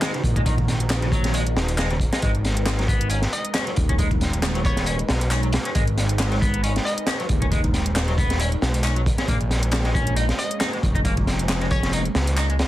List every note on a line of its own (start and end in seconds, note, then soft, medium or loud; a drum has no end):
0.00 2.19 D#3 medium
0.00 0.10 G#3 loud
0.00 2.19 D#4 medium
0.00 2.19 F#4 medium
0.00 9.24 A#4 medium
0.00 snare loud
0.00 clap medium
0.00 closed hi-hat medium
0.00 closed hi-hat soft
0.14 0.18 C#3 medium
0.14 closed hi-hat soft
0.24 1.58 A#1 medium
0.24 kick loud
0.24 closed hi-hat medium
0.36 0.40 G#3 medium
0.36 kick loud
0.36 closed hi-hat medium
0.46 0.54 D#3 medium
0.46 kick loud
0.46 closed hi-hat loud
0.46 closed hi-hat medium
0.58 kick medium
0.58 closed hi-hat soft
0.68 snare soft
0.68 closed hi-hat medium
0.80 closed hi-hat medium
0.90 snare loud
0.90 clap loud
0.90 closed hi-hat medium
0.90 closed hi-hat loud
1.02 1.06 C#3 medium
1.02 closed hi-hat soft
1.12 1.33 F#3 loud
1.12 kick medium
1.12 closed hi-hat medium
1.24 snare soft
1.24 closed hi-hat medium
1.34 1.42 G#3 medium
1.34 closed hi-hat medium
1.47 closed hi-hat soft
1.56 2.05 D#1 loud
1.56 snare loud
1.56 closed hi-hat medium
1.69 closed hi-hat medium
1.69 closed hi-hat soft
1.78 1.86 G#3 loud
1.78 snare loud
1.78 clap loud
1.78 closed hi-hat medium
1.91 1.94 C#3 medium
1.91 closed hi-hat soft
2.00 kick medium
2.00 closed hi-hat medium
2.13 2.16 G#3 medium
2.13 snare loud
2.13 closed hi-hat medium
2.22 3.27 G#1 loud
2.22 2.31 G#3 medium
2.22 9.24 G#3 medium
2.22 9.24 D#4 medium
2.22 9.24 B4 medium
2.22 kick loud
2.22 closed hi-hat medium
2.35 closed hi-hat soft
2.45 snare soft
2.45 closed hi-hat medium
2.57 closed hi-hat medium
2.66 snare loud
2.66 clap loud
2.66 closed hi-hat medium
2.79 2.83 F#3 medium
2.79 snare soft
2.79 closed hi-hat soft
2.88 3.10 B3 loud
2.88 kick medium
2.88 closed hi-hat medium
3.01 closed hi-hat medium
3.10 3.19 C#4 medium
3.10 closed hi-hat medium
3.22 snare soft
3.22 closed hi-hat soft
3.33 3.51 D#5 medium
3.33 closed hi-hat medium
3.45 closed hi-hat medium
3.54 3.63 C#4 loud
3.54 snare loud
3.54 clap loud
3.54 closed hi-hat medium
3.67 3.71 F#3 medium
3.67 closed hi-hat soft
3.76 5.03 D#1 medium
3.76 kick medium
3.76 closed hi-hat medium
3.89 3.93 C#4 medium
3.89 kick medium
3.89 closed hi-hat medium
3.98 4.07 G#3 medium
3.98 kick loud
3.98 closed hi-hat medium
4.11 kick loud
4.11 closed hi-hat soft
4.21 snare soft
4.21 closed hi-hat medium
4.33 closed hi-hat medium
4.42 snare loud
4.42 clap loud
4.42 closed hi-hat medium
4.55 4.59 F#3 medium
4.55 closed hi-hat soft
4.65 4.86 B3 loud
4.65 5.28 C#5 medium
4.65 kick medium
4.65 closed hi-hat medium
4.77 snare soft
4.77 closed hi-hat medium
4.86 4.95 C#4 medium
4.86 closed hi-hat medium
4.99 closed hi-hat soft
5.09 5.58 B1 loud
5.09 snare loud
5.09 closed hi-hat medium
5.21 closed hi-hat soft
5.21 closed hi-hat medium
5.31 5.39 C#4 loud
5.31 clap loud
5.31 closed hi-hat medium
5.43 5.47 F#3 medium
5.43 closed hi-hat soft
5.53 snare loud
5.53 closed hi-hat medium
5.65 5.69 C#4 medium
5.65 closed hi-hat medium
5.75 6.79 G#1 loud
5.75 5.83 G#3 medium
5.75 kick loud
5.75 closed hi-hat medium
5.87 closed hi-hat soft
5.97 snare soft
5.97 closed hi-hat medium
6.09 closed hi-hat medium
6.19 snare loud
6.19 clap loud
6.19 closed hi-hat medium
6.31 6.35 F#3 medium
6.31 snare soft
6.31 closed hi-hat soft
6.41 6.63 B3 loud
6.41 kick loud
6.41 closed hi-hat medium
6.54 closed hi-hat medium
6.64 6.72 C#4 medium
6.64 closed hi-hat medium
6.76 snare soft
6.76 closed hi-hat soft
6.85 7.03 D#5 loud
6.85 closed hi-hat medium
6.98 closed hi-hat medium
7.07 7.16 C#4 loud
7.07 snare loud
7.07 clap loud
7.07 closed hi-hat medium
7.20 7.24 F#3 medium
7.20 closed hi-hat soft
7.29 8.56 D#1 medium
7.29 kick medium
7.29 closed hi-hat medium
7.42 7.46 C#4 medium
7.42 kick medium
7.42 closed hi-hat medium
7.52 7.60 G#3 medium
7.52 kick loud
7.52 closed hi-hat medium
7.64 kick loud
7.64 closed hi-hat soft
7.74 snare soft
7.74 closed hi-hat medium
7.86 closed hi-hat medium
7.96 snare loud
7.96 clap loud
7.96 closed hi-hat medium
8.08 8.12 F#3 medium
8.08 closed hi-hat soft
8.18 8.39 B3 loud
8.18 kick medium
8.18 closed hi-hat medium
8.30 snare soft
8.30 closed hi-hat medium
8.40 8.48 C#4 medium
8.40 closed hi-hat medium
8.52 closed hi-hat soft
8.62 9.11 B1 loud
8.62 snare loud
8.62 closed hi-hat medium
8.74 closed hi-hat medium
8.74 closed hi-hat soft
8.84 8.92 C#4 loud
8.84 clap loud
8.84 closed hi-hat soft
8.84 closed hi-hat medium
8.96 9.00 F#3 medium
8.96 closed hi-hat soft
9.06 kick medium
9.06 closed hi-hat medium
9.18 9.22 C#4 medium
9.18 snare medium
9.18 closed hi-hat medium
9.28 10.32 A#1 loud
9.28 12.68 G#3 medium
9.28 9.36 A#3 medium
9.28 12.68 A#3 medium
9.28 12.68 C#4 loud
9.28 kick loud
9.28 closed hi-hat soft
9.28 closed hi-hat medium
9.41 closed hi-hat soft
9.51 snare soft
9.51 closed hi-hat medium
9.63 closed hi-hat medium
9.71 snare loud
9.71 clap loud
9.71 closed hi-hat medium
9.83 9.89 G#3 medium
9.83 snare soft
9.83 closed hi-hat soft
9.94 10.16 C#4 loud
9.94 kick loud
9.94 closed hi-hat medium
10.07 closed hi-hat medium
10.16 10.24 D#4 medium
10.16 closed hi-hat medium
10.29 snare soft
10.29 closed hi-hat soft
10.39 10.56 D#5 medium
10.39 closed hi-hat medium
10.51 closed hi-hat medium
10.60 10.68 D#4 loud
10.60 snare loud
10.60 clap loud
10.60 closed hi-hat medium
10.60 closed hi-hat soft
10.73 10.77 G#3 medium
10.73 closed hi-hat soft
10.83 12.09 F1 medium
10.83 kick medium
10.83 closed hi-hat medium
10.95 10.99 D#4 medium
10.95 kick loud
10.95 closed hi-hat medium
11.05 11.13 A#3 medium
11.05 kick loud
11.05 closed hi-hat loud
11.05 closed hi-hat medium
11.17 kick medium
11.17 closed hi-hat soft
11.27 snare soft
11.27 closed hi-hat medium
11.39 closed hi-hat medium
11.49 snare loud
11.49 clap loud
11.49 closed hi-hat medium
11.61 11.65 G#3 medium
11.61 closed hi-hat soft
11.71 11.92 C#4 loud
11.71 12.33 C#5 medium
11.71 kick medium
11.71 closed hi-hat medium
11.83 snare soft
11.83 closed hi-hat medium
11.93 12.01 D#4 medium
11.93 closed hi-hat medium
12.05 closed hi-hat soft
12.15 12.64 C#2 loud
12.15 snare loud
12.15 closed hi-hat medium
12.27 closed hi-hat medium
12.27 closed hi-hat soft
12.37 12.45 D#4 loud
12.37 clap loud
12.37 closed hi-hat medium
12.37 closed hi-hat soft
12.50 12.53 G#3 medium
12.50 closed hi-hat soft
12.59 snare loud
12.59 closed hi-hat medium